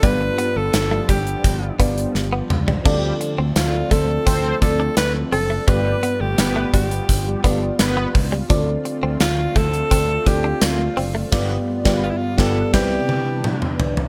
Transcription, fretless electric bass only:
\new Staff \with { instrumentName = "Fretless electric bass" } { \clef bass \time 4/4 \key g \mixolydian \tempo 4 = 85 g,,8 r16 g,,16 g,,8 g,,8 g,,8 g,,8 g,,8 cis,8 | d,8 r16 d,16 d,8 d,8 d,8 d,8 d,8 fis,,8 | g,,8 r16 g,,16 g,,8 g,,8 g,,8 g,,8 g,,8 cis,8 | d,8 r16 d,16 d,8 d,8 d,8 d,8 d,8 fis,,8 |
g,,8 r16 g,,8 r16 g,,8 c,8 r4. | }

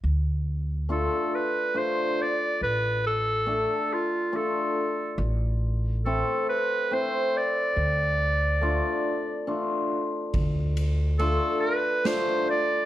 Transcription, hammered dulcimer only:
\new Staff \with { instrumentName = "Hammered dulcimer" } { \time 3/4 \key d \minor \tempo 4 = 70 r4 <a d' f'>8 r8 <a d' f'>8 r8 | r4 <a d' a'>8 r8 <a d' f'>8 r8 | r4 <a c' e'>8 r8 <a c' e'>8 r8 | r4 <a d' f'>8 r8 <a d' f'>8 r8 |
r4 <a d' f'>8 r8 <a d' f'>8 r8 | }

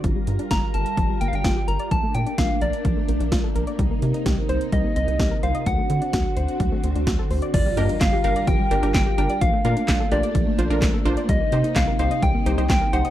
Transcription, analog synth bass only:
\new Staff \with { instrumentName = "Analog synth bass" } { \clef bass \time 4/4 \key g \minor \tempo 4 = 128 g,,16 r16 g,16 r16 g,,16 r16 g,,16 r16 g,,16 r16 g,,16 g,,16 g,,16 r16 g,,16 r16 | bes,,16 r16 bes,16 r16 bes,,16 r16 bes,,16 r16 bes,,16 r16 bes,,16 bes,,16 bes,,16 r16 bes,,16 r16 | c,16 r16 c16 r16 c,16 r16 c,16 r16 c,16 r16 c,16 c,16 c,16 r16 c,16 r16 | d,16 r16 d16 r16 d,16 r16 d,16 r16 d,16 r16 d,16 d,16 d,16 r16 d,16 r16 |
g,,16 r16 g,16 r16 g,,16 r16 g,,16 r16 g,,16 r16 g,,16 g,,16 g,,16 r16 g,,16 r16 | bes,,16 r16 bes,16 r16 bes,,16 r16 bes,,16 r16 bes,,16 r16 bes,,16 bes,,16 bes,,16 r16 bes,,16 r16 | c,16 r16 c16 r16 c,16 r16 c,16 r16 c,16 r16 c,16 c,16 c,16 r16 c,16 r16 | }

